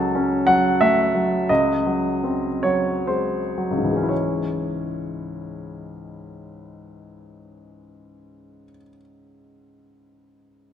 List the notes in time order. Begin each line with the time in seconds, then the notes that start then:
Already playing: C#2 F#3 A4
0.15 C#4
0.47 F#3 F#5
0.81 A3 E5
1.15 F#3
1.49 C#2 D#5
1.86 F#3
2.24 C4
2.63 F#3 C#5
3.07 G#3 C5
3.58 F#3
3.71 C#2
3.77 G#2
3.84 E3
3.90 G#3
3.96 C#4
4.03 E4
4.09 C#5